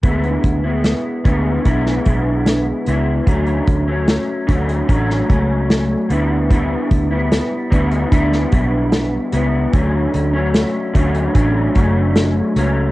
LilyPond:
<<
  \new Staff \with { instrumentName = "Clean electric guitar" } { \time 4/4 \key d \major \tempo 4 = 74 <d gis b e'>8. <gis b e'>8. <d gis b e'>8 <d gis b e'>8 <d gis b e'>4 <gis b e'>8 | <d fis a cis'>8. <fis a cis'>8. <d fis a cis'>8 <d fis a cis'>8 <fis a cis'>4 <d g b e'>8 | <d g b e'>8. <g b e'>8. <d g b e'>8 <d g b e'>8 <d g b e'>4 <g b e'>8 | <d fis a cis'>8. <fis a cis'>8. <d fis a cis'>8 <d fis a cis'>8 <d fis a cis'>4 <fis a cis'>8 | }
  \new Staff \with { instrumentName = "Fingered electric bass" } { \clef bass \time 4/4 \key d \major d,8 d,8. r16 d,8 b,,8 b,,4 cis,8 | d,8 d,8. r16 d,8 a,,8 cis,4 d,8~ | d,8 d,8. r16 d,8 d,8 b,,4 cis,8 | d,8 d,8. r16 d,8 a,,8 fis,,4 cis,8 | }
  \new DrumStaff \with { instrumentName = "Drums" } \drummode { \time 4/4 <hh bd>16 hh16 <hh bd>8 <hh sn>8 <hh bd>8 <hh bd>16 sn16 <hh bd>8 <hh sn>8 hh8 | <hh bd>16 hh16 <hh bd>8 <hh sn>8 <hh bd>16 hh16 <hh bd>16 sn16 <hh bd>8 <hh sn>8 hh8 | <hh bd>8 <hh bd>8 <hh sn>8 <hh bd>16 hh16 <hh bd>16 sn16 <hh bd>8 <hh sn>8 hh8 | <hh bd>8 hh8 <hh sn>8 <hh bd>16 hh16 <hh bd>8 <hh bd>8 <hh sn>8 hh8 | }
>>